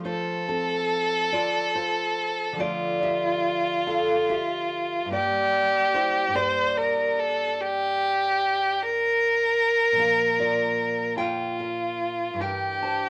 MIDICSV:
0, 0, Header, 1, 3, 480
1, 0, Start_track
1, 0, Tempo, 848656
1, 28, Time_signature, 12, 3, 24, 8
1, 2427, Tempo, 829876
1, 4347, Tempo, 795756
1, 6747, Tempo, 831025
1, 7614, End_track
2, 0, Start_track
2, 0, Title_t, "Violin"
2, 0, Program_c, 0, 40
2, 33, Note_on_c, 0, 69, 84
2, 1473, Note_on_c, 0, 65, 78
2, 1481, Note_off_c, 0, 69, 0
2, 2907, Note_off_c, 0, 65, 0
2, 2911, Note_on_c, 0, 67, 90
2, 3621, Note_on_c, 0, 72, 87
2, 3629, Note_off_c, 0, 67, 0
2, 3862, Note_on_c, 0, 70, 74
2, 3871, Note_off_c, 0, 72, 0
2, 4105, Note_on_c, 0, 69, 76
2, 4114, Note_off_c, 0, 70, 0
2, 4347, Note_on_c, 0, 67, 87
2, 4356, Note_off_c, 0, 69, 0
2, 5081, Note_on_c, 0, 70, 98
2, 5090, Note_off_c, 0, 67, 0
2, 6504, Note_off_c, 0, 70, 0
2, 6507, Note_on_c, 0, 65, 68
2, 7220, Note_on_c, 0, 67, 66
2, 7228, Note_off_c, 0, 65, 0
2, 7614, Note_off_c, 0, 67, 0
2, 7614, End_track
3, 0, Start_track
3, 0, Title_t, "Nylon-string guitar"
3, 0, Program_c, 1, 24
3, 0, Note_on_c, 1, 53, 61
3, 0, Note_on_c, 1, 57, 53
3, 27, Note_on_c, 1, 72, 88
3, 35, Note_on_c, 1, 65, 66
3, 257, Note_off_c, 1, 65, 0
3, 261, Note_off_c, 1, 72, 0
3, 275, Note_on_c, 1, 69, 80
3, 283, Note_on_c, 1, 60, 69
3, 735, Note_off_c, 1, 60, 0
3, 735, Note_off_c, 1, 69, 0
3, 749, Note_on_c, 1, 74, 102
3, 756, Note_on_c, 1, 65, 79
3, 975, Note_off_c, 1, 65, 0
3, 979, Note_off_c, 1, 74, 0
3, 990, Note_on_c, 1, 72, 78
3, 995, Note_on_c, 1, 65, 54
3, 1426, Note_off_c, 1, 53, 0
3, 1429, Note_on_c, 1, 50, 73
3, 1433, Note_off_c, 1, 57, 0
3, 1443, Note_on_c, 1, 53, 61
3, 1450, Note_off_c, 1, 65, 0
3, 1451, Note_off_c, 1, 72, 0
3, 1457, Note_on_c, 1, 57, 65
3, 1469, Note_on_c, 1, 74, 101
3, 1477, Note_on_c, 1, 65, 80
3, 1697, Note_off_c, 1, 65, 0
3, 1700, Note_off_c, 1, 74, 0
3, 1712, Note_on_c, 1, 76, 89
3, 1718, Note_on_c, 1, 67, 64
3, 2170, Note_off_c, 1, 67, 0
3, 2171, Note_off_c, 1, 76, 0
3, 2189, Note_on_c, 1, 77, 89
3, 2192, Note_on_c, 1, 69, 80
3, 2412, Note_off_c, 1, 69, 0
3, 2418, Note_off_c, 1, 77, 0
3, 2428, Note_on_c, 1, 76, 107
3, 2437, Note_on_c, 1, 67, 81
3, 2864, Note_off_c, 1, 50, 0
3, 2866, Note_on_c, 1, 43, 65
3, 2872, Note_off_c, 1, 53, 0
3, 2879, Note_off_c, 1, 57, 0
3, 2882, Note_off_c, 1, 67, 0
3, 2884, Note_on_c, 1, 55, 50
3, 2890, Note_off_c, 1, 76, 0
3, 2898, Note_on_c, 1, 58, 56
3, 2910, Note_on_c, 1, 74, 92
3, 2918, Note_on_c, 1, 67, 67
3, 3367, Note_off_c, 1, 67, 0
3, 3367, Note_off_c, 1, 74, 0
3, 3382, Note_on_c, 1, 72, 96
3, 3391, Note_on_c, 1, 64, 77
3, 3567, Note_off_c, 1, 43, 0
3, 3574, Note_on_c, 1, 43, 74
3, 3581, Note_off_c, 1, 55, 0
3, 3588, Note_on_c, 1, 55, 53
3, 3597, Note_off_c, 1, 58, 0
3, 3603, Note_on_c, 1, 58, 61
3, 3611, Note_off_c, 1, 64, 0
3, 3613, Note_off_c, 1, 72, 0
3, 3619, Note_on_c, 1, 74, 116
3, 3624, Note_on_c, 1, 67, 80
3, 5738, Note_off_c, 1, 43, 0
3, 5740, Note_on_c, 1, 46, 59
3, 5751, Note_off_c, 1, 55, 0
3, 5757, Note_on_c, 1, 53, 50
3, 5759, Note_off_c, 1, 58, 0
3, 5767, Note_off_c, 1, 74, 0
3, 5769, Note_off_c, 1, 67, 0
3, 5771, Note_on_c, 1, 58, 48
3, 5785, Note_on_c, 1, 77, 94
3, 5795, Note_on_c, 1, 70, 69
3, 6016, Note_off_c, 1, 70, 0
3, 6018, Note_off_c, 1, 77, 0
3, 6026, Note_on_c, 1, 74, 92
3, 6036, Note_on_c, 1, 65, 69
3, 6481, Note_off_c, 1, 65, 0
3, 6482, Note_off_c, 1, 74, 0
3, 6498, Note_on_c, 1, 79, 113
3, 6507, Note_on_c, 1, 70, 81
3, 6732, Note_off_c, 1, 70, 0
3, 6735, Note_off_c, 1, 79, 0
3, 6749, Note_on_c, 1, 77, 65
3, 6754, Note_on_c, 1, 70, 59
3, 7172, Note_off_c, 1, 46, 0
3, 7177, Note_on_c, 1, 43, 67
3, 7180, Note_off_c, 1, 53, 0
3, 7187, Note_off_c, 1, 58, 0
3, 7192, Note_on_c, 1, 52, 53
3, 7201, Note_off_c, 1, 70, 0
3, 7203, Note_off_c, 1, 77, 0
3, 7210, Note_on_c, 1, 62, 50
3, 7222, Note_on_c, 1, 79, 96
3, 7229, Note_on_c, 1, 70, 65
3, 7451, Note_off_c, 1, 70, 0
3, 7455, Note_off_c, 1, 79, 0
3, 7461, Note_on_c, 1, 81, 70
3, 7468, Note_on_c, 1, 72, 62
3, 7614, Note_off_c, 1, 43, 0
3, 7614, Note_off_c, 1, 52, 0
3, 7614, Note_off_c, 1, 62, 0
3, 7614, Note_off_c, 1, 72, 0
3, 7614, Note_off_c, 1, 81, 0
3, 7614, End_track
0, 0, End_of_file